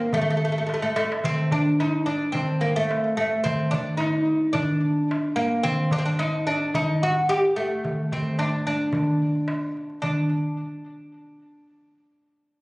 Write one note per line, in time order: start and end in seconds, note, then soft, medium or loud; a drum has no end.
0.00 0.13 A#3 medium
0.13 0.20 A3 medium
0.13 darbuka dum medium
0.21 0.29 A3 medium
0.27 0.36 A3 medium
0.27 darbuka ka soft
0.37 0.43 A3 soft
0.45 0.51 A3 medium
0.52 0.57 A3 soft
0.52 darbuka ka soft
0.58 0.65 A3 medium
0.66 0.72 A3 soft
0.66 darbuka tek medium
0.74 0.81 A3 medium
0.82 0.89 A3 medium
0.82 darbuka ka medium
0.96 1.24 A3 medium
0.96 darbuka tek medium
1.12 darbuka ka medium
1.24 1.52 C4 medium
1.24 darbuka dum medium
1.51 1.80 D4 medium
1.51 darbuka dum medium
1.80 2.06 D#4 medium
1.80 darbuka tek medium
1.94 darbuka ka soft
2.06 2.32 D4 medium
2.06 darbuka ka soft
2.32 2.61 C4 medium
2.32 darbuka dum medium
2.49 darbuka ka soft
2.61 2.75 A#3 medium
2.76 3.16 A3 medium
2.91 darbuka tek medium
3.17 3.45 A3 medium
3.17 darbuka ka soft
3.32 darbuka ka soft
3.44 3.70 C4 medium
3.44 darbuka dum medium
3.71 3.97 D4 medium
3.71 darbuka dum medium
3.97 4.52 D#4 medium
3.97 darbuka tek medium
4.15 darbuka ka soft
4.27 darbuka ka soft
4.53 5.38 D4 medium
4.53 darbuka dum medium
4.70 darbuka ka soft
5.11 darbuka tek medium
5.36 5.64 A#3 medium
5.36 darbuka ka soft
5.51 darbuka ka soft
5.63 5.89 C4 medium
5.63 darbuka dum medium
5.91 5.98 D4 medium
5.91 darbuka dum medium
5.99 6.05 C4 medium
6.06 6.19 D4 medium
6.19 6.46 D#4 medium
6.19 darbuka tek medium
6.33 darbuka ka soft
6.47 6.75 D4 medium
6.47 darbuka ka soft
6.74 7.02 D#4 medium
6.74 darbuka dum medium
6.89 darbuka ka soft
7.03 7.29 F#4 medium
7.29 7.57 G4 loud
7.29 darbuka tek medium
7.56 8.13 A3 medium
7.56 darbuka ka soft
7.71 darbuka ka soft
7.85 darbuka dum medium
8.12 8.38 C4 medium
8.12 darbuka dum medium
8.26 darbuka ka soft
8.39 8.65 D4 medium
8.39 darbuka tek medium
8.53 darbuka ka soft
8.66 9.72 D4 medium
8.66 darbuka ka soft
8.93 darbuka dum medium
9.06 darbuka ka soft
9.35 darbuka ka soft
9.48 darbuka tek medium
9.77 darbuka ka soft
9.90 darbuka ka soft
10.02 10.28 D4 medium
10.02 darbuka dum medium